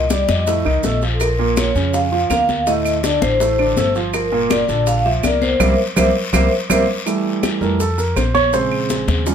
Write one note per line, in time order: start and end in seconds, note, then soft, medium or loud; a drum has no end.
0.00 0.23 C2 medium
0.00 0.11 D#5 loud
0.10 0.40 G3 medium
0.10 0.41 G4 medium
0.10 0.27 D5 medium
0.10 high bongo medium
0.10 high conga medium
0.10 short guiro medium
0.10 maracas medium
0.28 0.63 F2 medium
0.28 0.98 D#5 medium
0.28 high bongo soft
0.28 high conga medium
0.28 short guiro medium
0.28 maracas soft
0.47 0.62 A2 medium
0.47 0.62 A3 medium
0.47 high bongo medium
0.47 high conga soft
0.47 long guiro medium
0.47 maracas medium
0.65 0.82 C2 medium
0.65 0.80 D#3 medium
0.65 0.80 D#4 medium
0.65 high bongo soft
0.65 high conga soft
0.65 claves medium
0.83 1.69 A#1 medium
0.83 0.99 A3 medium
0.83 0.99 A4 medium
0.83 high bongo soft
0.83 low bongo medium
0.83 high conga medium
0.83 short guiro medium
0.83 maracas medium
1.02 1.32 F3 medium
1.02 1.32 F4 medium
1.02 high bongo soft
1.02 high conga soft
1.02 short guiro medium
1.02 maracas soft
1.14 1.21 A4 medium
1.20 1.54 A#4 medium
1.20 high bongo medium
1.20 high conga soft
1.20 long guiro medium
1.20 claves medium
1.20 maracas medium
1.39 1.69 A#2 medium
1.39 1.69 A#3 medium
1.39 high conga soft
1.57 1.91 C#5 medium
1.57 high bongo medium
1.57 high conga loud
1.57 short guiro medium
1.57 claves medium
1.57 maracas medium
1.75 2.26 F2 medium
1.75 2.06 C#3 medium
1.75 2.06 C#4 medium
1.75 high bongo soft
1.75 high conga soft
1.75 short guiro medium
1.75 maracas soft
1.94 2.29 F5 medium
1.94 high bongo medium
1.94 high conga soft
1.94 long guiro medium
1.94 maracas medium
2.12 2.27 F3 medium
2.12 2.27 F4 medium
2.12 high bongo soft
2.12 high conga soft
2.30 3.16 D2 medium
2.30 2.60 A#3 medium
2.30 2.61 A#4 medium
2.30 2.68 F5 medium
2.30 high bongo soft
2.30 low bongo medium
2.30 high conga medium
2.30 short guiro medium
2.30 claves medium
2.30 maracas medium
2.49 high bongo soft
2.49 high conga medium
2.49 short guiro medium
2.49 maracas soft
2.67 2.97 A2 medium
2.67 2.97 A3 medium
2.67 3.01 D#5 medium
2.67 high bongo medium
2.67 high conga soft
2.67 long guiro medium
2.67 maracas medium
2.85 high conga soft
2.85 claves medium
2.85 maracas medium
3.03 3.34 D3 medium
3.03 3.34 D4 medium
3.03 3.12 D5 medium
3.03 high bongo medium
3.03 high conga medium
3.03 short guiro medium
3.03 maracas medium
3.22 3.73 A1 medium
3.22 3.91 C5 medium
3.22 high bongo soft
3.22 high conga loud
3.22 short guiro medium
3.22 maracas soft
3.40 3.56 A2 medium
3.40 3.56 A3 medium
3.40 high bongo medium
3.40 high conga soft
3.40 long guiro medium
3.40 maracas medium
3.58 3.74 D3 medium
3.58 3.74 D4 medium
3.58 high bongo soft
3.58 high conga soft
3.58 claves medium
3.76 4.63 G1 medium
3.76 3.92 A3 medium
3.76 3.92 A4 medium
3.76 high bongo soft
3.76 low bongo medium
3.76 high conga medium
3.76 short guiro medium
3.76 maracas medium
3.95 4.26 F3 medium
3.95 4.26 F4 medium
3.95 high bongo soft
3.95 high conga soft
3.95 short guiro medium
3.95 maracas soft
4.14 4.51 A#4 medium
4.14 high bongo medium
4.14 high conga soft
4.14 long guiro medium
4.14 claves medium
4.14 maracas medium
4.32 4.62 A#2 medium
4.32 4.62 A#3 medium
4.32 high conga soft
4.50 4.85 D5 medium
4.50 high bongo medium
4.50 high conga loud
4.50 short guiro medium
4.50 claves medium
4.50 maracas medium
4.68 5.20 A#1 medium
4.68 4.99 D3 medium
4.68 4.99 D4 medium
4.68 high bongo soft
4.68 high conga soft
4.68 short guiro medium
4.68 maracas soft
4.87 5.06 F5 medium
4.87 high bongo medium
4.87 high conga soft
4.87 long guiro medium
4.87 maracas medium
5.05 5.21 F3 medium
5.05 5.21 F4 medium
5.05 5.24 E5 medium
5.05 high bongo soft
5.05 high conga soft
5.23 5.57 C2 medium
5.23 5.54 A#3 medium
5.23 5.54 A#4 medium
5.23 5.41 D5 medium
5.23 high bongo soft
5.23 low bongo medium
5.23 high conga medium
5.23 short guiro medium
5.23 claves medium
5.23 maracas medium
5.41 5.59 C5 medium
5.41 high bongo soft
5.41 high conga medium
5.41 short guiro medium
5.41 maracas soft
5.60 5.74 C2 medium
5.60 5.72 G3 medium
5.60 5.72 A#3 medium
5.60 5.72 C4 medium
5.60 5.72 A#4 medium
5.60 5.72 C5 medium
5.60 5.72 E5 medium
5.60 high bongo loud
5.60 low conga loud
5.60 long guiro medium
5.60 claves loud
5.60 maracas medium
5.96 6.10 C2 medium
5.96 6.08 G3 medium
5.96 6.08 A#3 medium
5.96 6.08 C4 medium
5.96 6.09 A#4 medium
5.96 6.09 C5 medium
5.96 6.09 E5 loud
5.96 high bongo loud
5.96 low conga loud
5.96 long guiro loud
5.96 claves medium
5.96 maracas loud
6.33 6.47 C2 medium
6.33 6.45 G3 medium
6.33 6.45 A#3 medium
6.33 6.45 C4 medium
6.33 6.46 A#4 medium
6.33 6.45 C5 loud
6.33 6.45 E5 medium
6.33 high bongo medium
6.33 low conga loud
6.33 long guiro medium
6.33 claves medium
6.33 maracas medium
6.70 6.84 C2 medium
6.70 6.81 G3 medium
6.70 6.82 A#3 medium
6.70 6.82 C4 medium
6.70 6.82 A#4 medium
6.70 6.82 C5 medium
6.70 6.82 E5 medium
6.70 high bongo medium
6.70 low conga medium
6.70 long guiro medium
6.70 claves loud
6.70 maracas loud
7.06 7.59 E3 soft
7.06 7.60 G3 soft
7.06 7.60 A3 medium
7.06 high bongo medium
7.06 high conga soft
7.06 long guiro medium
7.06 claves medium
7.06 maracas medium
7.25 high conga soft
7.43 high bongo medium
7.43 high conga medium
7.43 short guiro medium
7.43 claves medium
7.43 maracas medium
7.61 8.12 F2 medium
7.61 7.78 E3 soft
7.61 7.78 G3 soft
7.61 7.78 A3 soft
7.61 7.79 A#4 medium
7.61 high bongo soft
7.61 high conga soft
7.61 short guiro medium
7.61 maracas soft
7.80 7.98 A4 medium
7.80 high bongo medium
7.80 high conga soft
7.80 long guiro medium
7.80 maracas medium
7.98 8.16 A#4 medium
7.98 high bongo soft
7.98 high conga soft
7.98 maracas medium
8.16 9.02 A#1 medium
8.16 8.34 C5 medium
8.16 high bongo soft
8.16 low bongo medium
8.16 high conga medium
8.16 short guiro medium
8.16 claves medium
8.16 maracas medium
8.35 8.52 C#5 loud
8.35 high bongo soft
8.35 high conga medium
8.35 short guiro medium
8.35 maracas soft
8.53 9.22 C#3 soft
8.53 9.23 G#3 soft
8.53 9.23 C4 medium
8.53 9.22 C5 medium
8.53 high bongo medium
8.53 long guiro medium
8.53 maracas medium
8.72 high conga soft
8.72 claves medium
8.90 high bongo medium
8.90 high conga medium
8.90 short guiro medium
8.90 maracas medium
9.08 9.35 D#2 medium
9.08 high bongo soft
9.08 high conga loud
9.08 short guiro medium
9.08 maracas soft
9.26 9.35 F3 soft
9.26 9.35 G3 soft
9.26 9.35 C#4 medium
9.26 high bongo medium
9.26 high conga soft
9.26 long guiro medium
9.26 maracas medium